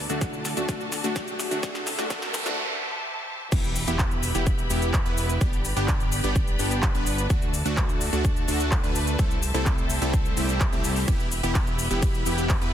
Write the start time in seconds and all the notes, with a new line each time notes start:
Already playing: F#4 A4 D5 A5, riser
0.09 D2 F#3 A3 D4 F#4, closed hi-hat, shaker
0.21 kick, snare, closed hi-hat, shaker
0.33 shaker
0.45 snare, open hi-hat, shaker
0.56 D2 F#3 A3 D4 F#4, closed hi-hat, shaker
0.68 D2 F#3 A3 D4 F#4, kick, snare, closed hi-hat, shaker
0.80 shaker
0.92 snare, open hi-hat, shaker
1.04 D2 F#3 A3 D4 F#4, closed hi-hat, shaker
1.16 kick, snare, closed hi-hat, shaker
1.28 closed hi-hat, shaker
1.39 snare, open hi-hat, shaker
1.51 D2 F#3 A3 D4 F#4, closed hi-hat, shaker
1.63 C2 F#3 A3 D4 F#4 G4 C5 E5 A5, kick, snare, closed hi-hat, noise sweep, shaker
1.75 snare, closed hi-hat, shaker
1.87 snare, open hi-hat, shaker
1.98 C2 F#3 A3 D4 F#4, snare, closed hi-hat, shaker
2.10 C2 F#3 A3 D4 F#4, kick, snare, closed hi-hat, shaker
2.22 snare, shaker
2.34 snare, open hi-hat, shaker
2.45 C2 F#3 A3 D4 F#4, snare, closed hi-hat, shaker
3.52 E1 B3 E4 G4 B4 E5 B5, kick, closed hi-hat, crash, impact, shaker
3.64 closed hi-hat, shaker
3.76 open hi-hat, shaker
3.87 E1 B3 E4 G4, closed hi-hat, shaker
3.99 kick, clap, closed hi-hat, shaker
4.11 closed hi-hat, shaker
4.23 open hi-hat, shaker
4.35 E1 B3 E4 G4, closed hi-hat, shaker
4.47 kick, closed hi-hat, shaker
4.58 closed hi-hat, shaker
4.70 E1 B3 E4 G4, open hi-hat, shaker
4.82 closed hi-hat, shaker
4.94 kick, clap, closed hi-hat, shaker
5.05 E1 B3 E4 B4, closed hi-hat, shaker
5.18 open hi-hat, shaker
5.29 closed hi-hat, shaker
5.41 G1 B3 D4 G4 B4 D5 B5, kick, closed hi-hat, shaker
5.53 closed hi-hat, shaker
5.65 open hi-hat, shaker
5.76 G1 B3 D4 G4, closed hi-hat, shaker
5.88 kick, clap, closed hi-hat, shaker
6.00 closed hi-hat, shaker
6.12 open hi-hat, shaker
6.24 G1 B3 D4 G4, closed hi-hat, shaker
6.36 kick, closed hi-hat, shaker
6.47 closed hi-hat, shaker
6.59 G1 B3 D4 G4, open hi-hat, shaker
6.71 closed hi-hat, shaker
6.83 kick, clap, closed hi-hat, shaker
6.95 G1 B3 D4 B4, closed hi-hat, shaker
7.07 open hi-hat, shaker
7.18 closed hi-hat, shaker
7.30 D2 A3 D4 F#4 A4 D5 A5, kick, closed hi-hat, shaker
7.42 closed hi-hat, shaker
7.54 open hi-hat, shaker
7.65 D2 A3 D4 F#4, closed hi-hat, shaker
7.77 kick, clap, closed hi-hat, shaker
7.89 closed hi-hat, shaker
8.01 open hi-hat, shaker
8.13 D2 A3 D4 F#4, closed hi-hat, shaker
8.25 kick, closed hi-hat, shaker
8.36 closed hi-hat, shaker
8.48 D2 A3 D4 F#4, open hi-hat, shaker
8.60 closed hi-hat, shaker
8.72 kick, clap, closed hi-hat, shaker
8.84 D2 A3 D4 B4, closed hi-hat, shaker
8.95 open hi-hat, shaker
9.07 closed hi-hat, shaker
9.19 C2 G3 A3 C4 E4 G4 A4 C5 E5, kick, closed hi-hat, shaker
9.31 closed hi-hat, shaker
9.43 open hi-hat, shaker
9.54 C2 G3 A3 C4 E4 A4, closed hi-hat, shaker
9.66 kick, clap, closed hi-hat, shaker
9.78 closed hi-hat, shaker
9.90 open hi-hat, shaker
10.02 C2 G3 A3 C4 E4 A4, closed hi-hat, shaker
10.14 kick, closed hi-hat, shaker
10.25 closed hi-hat, shaker
10.37 C2 G3 A3 C4 E4 G4, open hi-hat, shaker
10.49 closed hi-hat, shaker
10.61 kick, clap, closed hi-hat, shaker
10.72 C2 G3 A3 C4 E4 G4, closed hi-hat, shaker
10.84 open hi-hat, shaker
10.96 open hi-hat, shaker
11.08 E1 B3 E4 G4 B4 E5 B5, kick, closed hi-hat, ride, shaker
11.20 closed hi-hat, shaker
11.32 open hi-hat, shaker
11.43 E1 B3 E4 G4, closed hi-hat, shaker
11.55 kick, clap, closed hi-hat, ride, shaker
11.67 closed hi-hat, shaker
11.79 open hi-hat, shaker
11.90 E1 B3 E4 G4, closed hi-hat, shaker
12.02 kick, closed hi-hat, ride, shaker
12.14 closed hi-hat, shaker
12.26 E1 B3 E4 G4, open hi-hat, shaker
12.38 closed hi-hat, shaker
12.49 kick, clap, closed hi-hat, ride, shaker
12.61 E2 B3 E4 B4, closed hi-hat, shaker